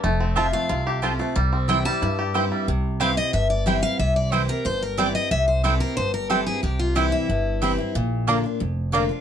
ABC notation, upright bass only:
X:1
M:4/4
L:1/8
Q:1/4=182
K:Cmix
V:1 name="Upright bass" clef=bass
F,,,4 C,,4 | C,,4 G,,4 | C,,4 G,,,4 | C,,4 G,,,4 |
C,,4 G,,,4 | C,,4 G,,,4 | B,,,4 F,,,4 |]